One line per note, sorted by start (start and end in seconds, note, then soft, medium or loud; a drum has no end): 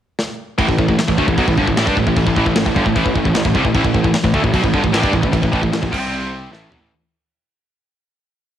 0.19 snare medium
0.59 0.68 A1 loud
0.59 0.67 A2 medium
0.59 0.68 E3 loud
0.59 kick loud
0.59 crash medium
0.69 0.78 A1 medium
0.69 0.78 A2 medium
0.69 0.78 E3 medium
0.69 kick medium
0.78 0.87 A1 medium
0.78 0.87 A2 medium
0.78 0.87 E3 medium
0.78 kick medium
0.88 0.98 A1 medium
0.88 0.97 A2 medium
0.88 0.98 E3 medium
0.88 kick medium
0.98 muted picked electric bass stroke soft
0.98 muted distorted electric guitar stroke medium
0.98 snare loud
0.98 crash medium
1.07 1.17 A1 medium
1.07 1.17 A2 medium
1.07 1.18 E3 medium
1.07 kick loud
1.18 1.27 D2 medium
1.18 1.27 D3 loud
1.18 1.27 A3 medium
1.18 kick medium
1.28 1.37 A1 medium
1.28 1.37 A2 medium
1.28 1.38 E3 medium
1.28 kick medium
1.38 1.47 B1 loud
1.38 1.47 B2 loud
1.38 1.47 F#3 loud
1.38 kick loud
1.38 crash medium
1.47 1.56 A1 medium
1.47 1.58 A2 medium
1.47 1.58 E3 medium
1.47 kick loud
1.58 1.67 G1 medium
1.58 1.67 G2 loud
1.58 1.67 D3 loud
1.58 kick medium
1.67 1.76 A1 medium
1.67 1.77 A2 medium
1.67 1.77 E3 medium
1.67 kick medium
1.77 1.86 A1 loud
1.77 1.87 A2 medium
1.77 1.86 E3 loud
1.77 snare loud
1.77 crash medium
1.87 1.96 G2 medium
1.87 1.96 G3 medium
1.87 1.97 D4 loud
1.87 kick loud
1.97 2.06 A1 medium
1.97 2.06 A2 medium
1.97 2.07 E3 medium
1.97 kick medium
2.07 2.16 A1 medium
2.07 2.16 A2 medium
2.07 2.17 E3 medium
2.07 kick medium
2.16 2.26 A1 medium
2.16 2.26 A2 medium
2.16 2.26 E3 medium
2.16 kick loud
2.16 crash medium
2.27 2.36 A1 medium
2.27 2.36 A2 medium
2.27 2.37 E3 medium
2.27 kick medium
2.36 2.45 A1 medium
2.36 2.46 A2 medium
2.36 2.46 E3 medium
2.36 kick medium
2.46 2.55 A1 medium
2.46 2.55 A2 medium
2.46 2.56 E3 medium
2.46 kick medium
2.56 2.65 A1 medium
2.56 2.65 A2 medium
2.56 2.65 E3 medium
2.56 snare loud
2.56 crash medium
2.66 2.75 A1 medium
2.66 2.76 A2 medium
2.66 2.76 E3 medium
2.66 kick medium
2.75 2.85 G1 loud
2.75 2.85 G2 medium
2.75 2.85 D3 medium
2.75 kick medium
2.86 2.95 A1 medium
2.86 2.94 A2 medium
2.86 2.95 E3 medium
2.86 kick medium
2.95 3.05 A1 loud
2.95 3.05 A2 medium
2.95 3.05 E3 loud
2.95 kick medium
2.95 crash medium
3.06 3.15 A1 medium
3.06 3.15 A2 medium
3.06 3.15 E3 medium
3.06 kick medium
3.15 3.24 A1 medium
3.15 3.24 A2 medium
3.15 3.25 E3 medium
3.15 kick medium
3.25 3.34 A1 medium
3.25 3.34 A2 medium
3.25 3.34 E3 medium
3.25 kick medium
3.35 3.44 A1 medium
3.35 3.44 A2 medium
3.35 3.45 E3 medium
3.35 snare loud
3.35 crash medium
3.45 3.54 A1 medium
3.45 3.54 A2 medium
3.45 3.55 E3 medium
3.45 kick loud
3.55 3.64 C2 loud
3.55 3.64 C3 medium
3.55 3.64 G3 loud
3.55 kick medium
3.65 3.74 A1 medium
3.65 3.74 A2 medium
3.65 3.74 E3 medium
3.65 kick medium
3.74 3.84 A1 loud
3.74 3.83 A2 loud
3.74 3.84 E3 medium
3.74 kick loud
3.74 crash medium
3.84 3.93 A1 medium
3.84 3.93 A2 medium
3.84 3.93 E3 medium
3.84 kick medium
3.94 4.03 A1 medium
3.94 4.02 A2 medium
3.94 4.03 E3 medium
3.94 kick medium
4.03 4.13 A1 medium
4.03 4.14 A2 medium
4.03 4.14 E3 medium
4.03 kick medium
4.13 muted picked electric bass stroke soft
4.13 muted distorted electric guitar stroke medium
4.13 snare loud
4.13 crash medium
4.24 4.33 A1 medium
4.24 4.34 A2 medium
4.24 4.34 E3 medium
4.24 kick loud
4.34 4.43 D2 medium
4.34 4.43 D3 loud
4.34 4.43 A3 medium
4.34 kick loud
4.44 4.53 A1 medium
4.44 4.54 A2 medium
4.44 4.54 E3 medium
4.44 kick medium
4.54 4.63 B1 loud
4.54 4.63 B2 loud
4.54 4.64 F#3 loud
4.54 kick loud
4.54 crash medium
4.64 4.73 A1 medium
4.64 4.73 A2 medium
4.64 4.74 E3 medium
4.64 kick medium
4.74 4.83 G1 loud
4.74 4.83 G2 medium
4.74 4.83 D3 loud
4.74 kick medium
4.83 4.93 A1 medium
4.83 4.91 A2 medium
4.83 4.92 E3 medium
4.83 kick medium
4.92 5.02 A1 loud
4.92 5.02 A2 medium
4.92 5.01 E3 loud
4.92 snare loud
4.92 crash medium
5.01 5.12 G2 medium
5.01 5.11 G3 medium
5.01 5.12 D4 loud
5.01 kick loud
5.12 5.22 A1 medium
5.12 5.21 A2 medium
5.12 5.21 E3 medium
5.12 kick medium
5.22 5.32 A1 medium
5.22 5.31 A2 medium
5.22 5.31 E3 medium
5.22 kick medium
5.32 5.42 A1 medium
5.32 5.41 A2 medium
5.32 5.41 E3 medium
5.32 kick loud
5.32 crash medium
5.42 5.52 A1 medium
5.42 5.51 A2 medium
5.42 5.51 E3 medium
5.42 kick medium
5.52 5.62 A1 medium
5.52 5.61 A2 loud
5.52 5.62 E3 loud
5.52 kick medium
5.62 5.71 A1 medium
5.62 5.71 A2 medium
5.62 5.71 E3 medium
5.62 kick medium
5.71 5.81 A1 medium
5.71 5.81 A2 medium
5.71 5.81 E3 medium
5.71 snare loud
5.71 crash medium
5.82 5.92 A1 medium
5.82 5.91 A2 medium
5.82 5.91 E3 medium
5.82 kick loud
5.91 6.48 C2 loud
5.91 6.50 C3 medium
5.91 6.51 G3 loud
5.91 6.51 C4 loud
5.91 kick medium
5.91 crash loud
6.13 crash medium
6.51 6.70 A1 medium
6.51 6.70 A2 medium
6.51 6.71 E3 medium
6.51 6.71 A3 loud
6.51 snare medium
6.70 6.81 B1 medium
6.70 6.80 B2 medium
6.70 6.81 F#3 loud
6.70 floor tom medium
6.81 6.91 A1 medium
6.81 6.91 A2 medium
6.81 6.91 E3 loud